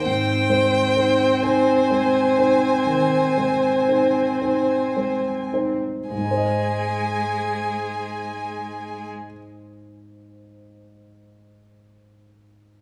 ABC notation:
X:1
M:12/8
L:1/16
Q:3/8=36
K:Ab
V:1 name="Violin"
g6 a16 z2 | a24 |]
V:2 name="Viola"
c16- c4- c z3 | A24 |]
V:3 name="Grand piano"
A,,2 [A,c]2 [Ec]2 [Ec]2 [A,c]2 [Ec]2 E,2 [A,c]2 [Ec]2 [Ec]2 [A,c]2 [Ec]2 | [A,,A,Ece]24 |]
V:4 name="Cello"
C16- C6- C z | A,24 |]